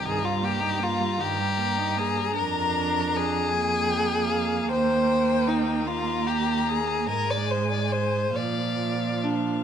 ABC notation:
X:1
M:6/8
L:1/16
Q:3/8=51
K:Eb
V:1 name="Violin"
b12- | b6 a2 g2 f2 | g6 b6 | a6 f6 |]
V:2 name="Violin"
A F G2 F2 G4 A2 | B4 A8 | c4 E2 F2 G2 A2 | B d c d c2 d4 D2 |]
V:3 name="Viola"
E, G, B, E B, G, E, G, B, E B, G, | D6 B,6- | B,12 | A,6 F,6 |]
V:4 name="Cello" clef=bass
G,,6 G,,6 | F,,12 | E,,12 | A,,6 B,,6 |]